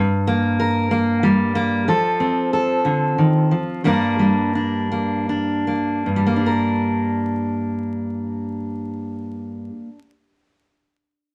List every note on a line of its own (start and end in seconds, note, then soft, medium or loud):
0.00 1.86 G2 medium
0.27 0.90 A#3 medium
0.60 1.83 A#4 medium
0.91 1.54 A#3 medium
1.23 1.83 G3 medium
1.55 1.87 A#3 medium
1.88 3.50 F3 medium
1.88 2.52 A4 medium
2.20 3.81 C4 medium
2.53 3.81 A4 medium
2.85 3.17 D3 medium
3.18 3.51 D#3 medium
3.51 3.84 F3 soft
3.84 6.05 G2 medium
3.84 4.18 G3 medium
3.84 4.90 A#3 medium
3.84 4.54 D4 soft
3.84 6.03 A#4 medium
4.19 6.01 G3 soft
4.55 5.28 D4 soft
4.92 5.66 A#3 soft
5.29 6.35 D4 soft
5.67 6.25 A#3 soft
6.06 9.68 G2 soft
6.16 9.78 G3 soft
6.27 9.89 A#3 soft
6.36 9.98 D4 soft
6.46 10.09 A#4 soft